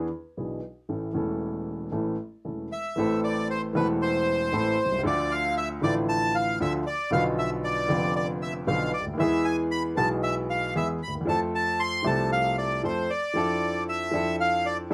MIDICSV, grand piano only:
0, 0, Header, 1, 2, 480
1, 0, Start_track
1, 0, Key_signature, 0, "minor"
1, 0, Tempo, 519031
1, 819, Time_signature, 4, 2, 24, 8
1, 13814, End_track
2, 0, Start_track
2, 0, Title_t, "Grand piano"
2, 0, Program_c, 0, 0
2, 344, Note_on_c, 0, 52, 45
2, 349, Note_on_c, 0, 35, 50
2, 350, Note_on_c, 0, 47, 52
2, 350, Note_on_c, 0, 59, 42
2, 352, Note_on_c, 0, 62, 39
2, 354, Note_on_c, 0, 68, 49
2, 544, Note_off_c, 0, 52, 0
2, 546, Note_off_c, 0, 35, 0
2, 547, Note_off_c, 0, 47, 0
2, 547, Note_off_c, 0, 59, 0
2, 548, Note_off_c, 0, 62, 0
2, 549, Note_off_c, 0, 68, 0
2, 821, Note_on_c, 0, 52, 44
2, 822, Note_on_c, 0, 33, 55
2, 824, Note_on_c, 0, 45, 57
2, 824, Note_on_c, 0, 57, 43
2, 825, Note_on_c, 0, 61, 43
2, 828, Note_on_c, 0, 69, 51
2, 1021, Note_off_c, 0, 52, 0
2, 1022, Note_off_c, 0, 33, 0
2, 1023, Note_off_c, 0, 45, 0
2, 1023, Note_off_c, 0, 57, 0
2, 1023, Note_off_c, 0, 61, 0
2, 1025, Note_off_c, 0, 69, 0
2, 1041, Note_on_c, 0, 52, 63
2, 1055, Note_on_c, 0, 57, 58
2, 1057, Note_on_c, 0, 28, 72
2, 1061, Note_on_c, 0, 40, 71
2, 1064, Note_on_c, 0, 61, 58
2, 1078, Note_on_c, 0, 69, 68
2, 1734, Note_off_c, 0, 52, 0
2, 1741, Note_off_c, 0, 57, 0
2, 1742, Note_off_c, 0, 28, 0
2, 1744, Note_off_c, 0, 40, 0
2, 1746, Note_off_c, 0, 61, 0
2, 1753, Note_off_c, 0, 69, 0
2, 1773, Note_on_c, 0, 52, 57
2, 1774, Note_on_c, 0, 33, 71
2, 1777, Note_on_c, 0, 45, 66
2, 1778, Note_on_c, 0, 61, 52
2, 1779, Note_on_c, 0, 57, 54
2, 1780, Note_on_c, 0, 69, 64
2, 1980, Note_off_c, 0, 52, 0
2, 1981, Note_off_c, 0, 33, 0
2, 1982, Note_off_c, 0, 45, 0
2, 1983, Note_off_c, 0, 57, 0
2, 1983, Note_off_c, 0, 61, 0
2, 1984, Note_off_c, 0, 69, 0
2, 2263, Note_on_c, 0, 52, 42
2, 2263, Note_on_c, 0, 57, 38
2, 2267, Note_on_c, 0, 61, 35
2, 2268, Note_on_c, 0, 40, 47
2, 2268, Note_on_c, 0, 69, 46
2, 2269, Note_on_c, 0, 28, 45
2, 2469, Note_off_c, 0, 52, 0
2, 2469, Note_off_c, 0, 57, 0
2, 2471, Note_off_c, 0, 61, 0
2, 2472, Note_off_c, 0, 28, 0
2, 2472, Note_off_c, 0, 40, 0
2, 2472, Note_off_c, 0, 69, 0
2, 2736, Note_on_c, 0, 52, 76
2, 2747, Note_on_c, 0, 57, 71
2, 2754, Note_on_c, 0, 45, 87
2, 2756, Note_on_c, 0, 33, 91
2, 2760, Note_on_c, 0, 60, 76
2, 2770, Note_on_c, 0, 69, 88
2, 3431, Note_off_c, 0, 52, 0
2, 3437, Note_off_c, 0, 57, 0
2, 3440, Note_off_c, 0, 45, 0
2, 3441, Note_off_c, 0, 33, 0
2, 3443, Note_off_c, 0, 60, 0
2, 3448, Note_off_c, 0, 69, 0
2, 3452, Note_on_c, 0, 52, 78
2, 3463, Note_on_c, 0, 57, 69
2, 3470, Note_on_c, 0, 28, 84
2, 3470, Note_on_c, 0, 40, 89
2, 3479, Note_on_c, 0, 60, 70
2, 3487, Note_on_c, 0, 69, 83
2, 4148, Note_off_c, 0, 52, 0
2, 4153, Note_off_c, 0, 57, 0
2, 4156, Note_off_c, 0, 40, 0
2, 4157, Note_off_c, 0, 28, 0
2, 4161, Note_off_c, 0, 60, 0
2, 4165, Note_off_c, 0, 69, 0
2, 4184, Note_on_c, 0, 52, 74
2, 4187, Note_on_c, 0, 33, 79
2, 4187, Note_on_c, 0, 57, 68
2, 4190, Note_on_c, 0, 45, 91
2, 4193, Note_on_c, 0, 60, 64
2, 4194, Note_on_c, 0, 69, 84
2, 4391, Note_off_c, 0, 52, 0
2, 4393, Note_off_c, 0, 33, 0
2, 4393, Note_off_c, 0, 57, 0
2, 4394, Note_off_c, 0, 45, 0
2, 4396, Note_off_c, 0, 60, 0
2, 4396, Note_off_c, 0, 69, 0
2, 4493, Note_on_c, 0, 35, 49
2, 4553, Note_on_c, 0, 36, 65
2, 4554, Note_off_c, 0, 35, 0
2, 4611, Note_on_c, 0, 37, 72
2, 4614, Note_off_c, 0, 36, 0
2, 4654, Note_on_c, 0, 50, 99
2, 4664, Note_on_c, 0, 53, 70
2, 4667, Note_on_c, 0, 38, 93
2, 4673, Note_off_c, 0, 37, 0
2, 4677, Note_on_c, 0, 57, 76
2, 4689, Note_on_c, 0, 65, 86
2, 5351, Note_off_c, 0, 53, 0
2, 5352, Note_off_c, 0, 38, 0
2, 5354, Note_off_c, 0, 50, 0
2, 5357, Note_off_c, 0, 57, 0
2, 5363, Note_off_c, 0, 65, 0
2, 5368, Note_on_c, 0, 50, 77
2, 5381, Note_on_c, 0, 53, 69
2, 5388, Note_on_c, 0, 33, 94
2, 5390, Note_on_c, 0, 45, 93
2, 5394, Note_on_c, 0, 57, 73
2, 5408, Note_on_c, 0, 65, 81
2, 6061, Note_off_c, 0, 50, 0
2, 6068, Note_off_c, 0, 53, 0
2, 6071, Note_off_c, 0, 33, 0
2, 6072, Note_off_c, 0, 45, 0
2, 6074, Note_off_c, 0, 57, 0
2, 6081, Note_off_c, 0, 65, 0
2, 6107, Note_on_c, 0, 50, 89
2, 6110, Note_on_c, 0, 53, 73
2, 6111, Note_on_c, 0, 57, 69
2, 6113, Note_on_c, 0, 38, 89
2, 6115, Note_on_c, 0, 65, 83
2, 6310, Note_off_c, 0, 53, 0
2, 6311, Note_off_c, 0, 50, 0
2, 6311, Note_off_c, 0, 57, 0
2, 6312, Note_off_c, 0, 38, 0
2, 6313, Note_off_c, 0, 65, 0
2, 6572, Note_on_c, 0, 50, 82
2, 6579, Note_on_c, 0, 53, 77
2, 6588, Note_on_c, 0, 35, 94
2, 6589, Note_on_c, 0, 47, 96
2, 6597, Note_on_c, 0, 59, 77
2, 6606, Note_on_c, 0, 65, 89
2, 7260, Note_off_c, 0, 50, 0
2, 7264, Note_off_c, 0, 53, 0
2, 7268, Note_off_c, 0, 35, 0
2, 7269, Note_off_c, 0, 47, 0
2, 7273, Note_off_c, 0, 59, 0
2, 7277, Note_off_c, 0, 65, 0
2, 7286, Note_on_c, 0, 50, 76
2, 7294, Note_on_c, 0, 53, 70
2, 7302, Note_on_c, 0, 29, 93
2, 7303, Note_on_c, 0, 41, 92
2, 7308, Note_on_c, 0, 59, 74
2, 7321, Note_on_c, 0, 65, 92
2, 7977, Note_off_c, 0, 50, 0
2, 7982, Note_off_c, 0, 53, 0
2, 7985, Note_off_c, 0, 29, 0
2, 7986, Note_off_c, 0, 41, 0
2, 7989, Note_off_c, 0, 59, 0
2, 7995, Note_off_c, 0, 65, 0
2, 8019, Note_on_c, 0, 50, 75
2, 8019, Note_on_c, 0, 53, 69
2, 8023, Note_on_c, 0, 35, 87
2, 8025, Note_on_c, 0, 59, 70
2, 8026, Note_on_c, 0, 47, 82
2, 8028, Note_on_c, 0, 65, 87
2, 8222, Note_off_c, 0, 50, 0
2, 8222, Note_off_c, 0, 53, 0
2, 8224, Note_off_c, 0, 35, 0
2, 8225, Note_off_c, 0, 59, 0
2, 8226, Note_off_c, 0, 47, 0
2, 8227, Note_off_c, 0, 65, 0
2, 8329, Note_on_c, 0, 37, 54
2, 8383, Note_on_c, 0, 38, 63
2, 8385, Note_off_c, 0, 37, 0
2, 8443, Note_off_c, 0, 38, 0
2, 8444, Note_on_c, 0, 39, 78
2, 8487, Note_on_c, 0, 52, 97
2, 8501, Note_on_c, 0, 56, 75
2, 8503, Note_off_c, 0, 39, 0
2, 8509, Note_on_c, 0, 40, 99
2, 8512, Note_on_c, 0, 59, 74
2, 8523, Note_on_c, 0, 68, 91
2, 9186, Note_off_c, 0, 56, 0
2, 9188, Note_off_c, 0, 52, 0
2, 9190, Note_off_c, 0, 40, 0
2, 9191, Note_off_c, 0, 59, 0
2, 9197, Note_off_c, 0, 68, 0
2, 9207, Note_on_c, 0, 52, 78
2, 9220, Note_on_c, 0, 56, 72
2, 9225, Note_on_c, 0, 35, 91
2, 9226, Note_on_c, 0, 47, 89
2, 9230, Note_on_c, 0, 59, 73
2, 9244, Note_on_c, 0, 68, 78
2, 9904, Note_off_c, 0, 52, 0
2, 9911, Note_off_c, 0, 56, 0
2, 9913, Note_off_c, 0, 35, 0
2, 9914, Note_off_c, 0, 47, 0
2, 9916, Note_off_c, 0, 59, 0
2, 9923, Note_off_c, 0, 68, 0
2, 9946, Note_on_c, 0, 52, 77
2, 9948, Note_on_c, 0, 40, 79
2, 9949, Note_on_c, 0, 56, 65
2, 9951, Note_on_c, 0, 68, 82
2, 9952, Note_on_c, 0, 59, 66
2, 10151, Note_off_c, 0, 40, 0
2, 10152, Note_off_c, 0, 56, 0
2, 10153, Note_off_c, 0, 52, 0
2, 10153, Note_off_c, 0, 59, 0
2, 10153, Note_off_c, 0, 68, 0
2, 10245, Note_on_c, 0, 38, 53
2, 10308, Note_off_c, 0, 38, 0
2, 10308, Note_on_c, 0, 39, 64
2, 10367, Note_on_c, 0, 40, 73
2, 10370, Note_off_c, 0, 39, 0
2, 10408, Note_on_c, 0, 53, 94
2, 10420, Note_on_c, 0, 57, 67
2, 10424, Note_on_c, 0, 41, 92
2, 10429, Note_off_c, 0, 40, 0
2, 10429, Note_on_c, 0, 60, 72
2, 10447, Note_on_c, 0, 69, 88
2, 11109, Note_off_c, 0, 53, 0
2, 11110, Note_off_c, 0, 57, 0
2, 11111, Note_off_c, 0, 41, 0
2, 11114, Note_off_c, 0, 60, 0
2, 11123, Note_off_c, 0, 69, 0
2, 11123, Note_on_c, 0, 53, 74
2, 11136, Note_on_c, 0, 57, 70
2, 11140, Note_on_c, 0, 36, 93
2, 11141, Note_on_c, 0, 48, 89
2, 11151, Note_on_c, 0, 60, 69
2, 11161, Note_on_c, 0, 69, 83
2, 11823, Note_off_c, 0, 53, 0
2, 11830, Note_off_c, 0, 57, 0
2, 11832, Note_off_c, 0, 36, 0
2, 11832, Note_off_c, 0, 48, 0
2, 11837, Note_off_c, 0, 60, 0
2, 11842, Note_off_c, 0, 69, 0
2, 11870, Note_on_c, 0, 53, 83
2, 11875, Note_on_c, 0, 41, 81
2, 11875, Note_on_c, 0, 57, 68
2, 11877, Note_on_c, 0, 69, 81
2, 11880, Note_on_c, 0, 60, 65
2, 12075, Note_off_c, 0, 53, 0
2, 12076, Note_off_c, 0, 41, 0
2, 12076, Note_off_c, 0, 57, 0
2, 12077, Note_off_c, 0, 69, 0
2, 12078, Note_off_c, 0, 60, 0
2, 12334, Note_on_c, 0, 53, 77
2, 12345, Note_on_c, 0, 62, 75
2, 12347, Note_off_c, 0, 53, 0
2, 12354, Note_on_c, 0, 41, 89
2, 12355, Note_on_c, 0, 53, 93
2, 12358, Note_on_c, 0, 64, 71
2, 12367, Note_on_c, 0, 69, 94
2, 13030, Note_off_c, 0, 62, 0
2, 13034, Note_off_c, 0, 41, 0
2, 13035, Note_off_c, 0, 53, 0
2, 13036, Note_off_c, 0, 64, 0
2, 13041, Note_off_c, 0, 69, 0
2, 13053, Note_on_c, 0, 53, 89
2, 13065, Note_on_c, 0, 62, 67
2, 13073, Note_on_c, 0, 41, 96
2, 13075, Note_on_c, 0, 64, 73
2, 13088, Note_on_c, 0, 69, 93
2, 13747, Note_off_c, 0, 62, 0
2, 13748, Note_off_c, 0, 53, 0
2, 13751, Note_off_c, 0, 41, 0
2, 13752, Note_off_c, 0, 64, 0
2, 13758, Note_off_c, 0, 69, 0
2, 13783, Note_on_c, 0, 62, 74
2, 13783, Note_on_c, 0, 64, 72
2, 13785, Note_on_c, 0, 53, 94
2, 13814, Note_off_c, 0, 53, 0
2, 13814, Note_off_c, 0, 62, 0
2, 13814, Note_off_c, 0, 64, 0
2, 13814, End_track
0, 0, End_of_file